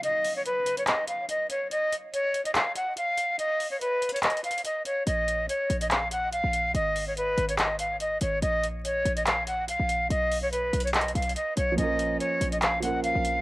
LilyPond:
<<
  \new Staff \with { instrumentName = "Flute" } { \time 4/4 \key bes \phrygian \tempo 4 = 143 ees''8. des''16 ces''8. des''16 ees''8 f''8 ees''8 des''8 | ees''4 des''8. ees''16 f''8 ges''8 f''4 | ees''8. des''16 ces''8. des''16 ees''8 f''8 ees''8 des''8 | ees''4 des''8. ees''16 f''8 ges''8 f''4 |
ees''8. des''16 ces''8. des''16 ees''8 f''8 ees''8 des''8 | ees''4 des''8. ees''16 f''8 ges''8 f''4 | dis''8. cis''16 b'8. cis''16 dis''8 f''8 dis''8 cis''8 | ees''4 des''8. ees''16 f''8 ges''8 f''4 | }
  \new Staff \with { instrumentName = "Grand piano" } { \time 4/4 \key bes \phrygian r1 | r1 | r1 | r1 |
r1 | r1 | r1 | <f bes des' f' bes'>2~ <f bes des' f' bes'>8 <f bes des' f' bes'>4. | }
  \new Staff \with { instrumentName = "808-style bass" } { \clef bass \time 4/4 \key bes \phrygian r1 | r1 | r1 | bes,,4 r8 bes,,4.~ bes,,16 bes,,8. |
aes,,4. aes,,2 aes,,8 | bes,,4. bes,,4.~ bes,,16 bes,,8. | b,,4. b,,4 b,,8 r8 b,,8 | bes,,4 r8 bes,,4.~ bes,,16 bes,,8. | }
  \new DrumStaff \with { instrumentName = "Drums" } \drummode { \time 4/4 hh8 hho8 hh8 hh16 hh16 <hc hh>8 hh8 hh8 hh8 | hh8 hh8 hh8 hh16 hh16 <hc hh>8 hh8 hh8 hh8 | hh8 hho8 \tuplet 3/2 { hh16 r16 r16 hh16 hh16 hh16 <hc hh>16 hh16 hh16 hh16 hh16 hh16 } hh8 hh8 | hh8 hh8 hh8 hh16 hh16 <hc hh>8 hh8 hh8 hh8 |
hh8 hho8 hh8 hh16 hh16 <hc hh>8 hh8 hh8 hh8 | hh8 hh8 hh8 hh16 hh16 <hc hh>8 hh8 hh8 hh8 | hh8 hho8 \tuplet 3/2 { hh16 r16 r16 hh16 hh16 hh16 <hc hh>16 hh16 hh16 hh16 hh16 hh16 } hh8 hh8 | hh8 hh8 hh8 hh16 hh16 <hc hh>8 hh8 hh8 hh8 | }
>>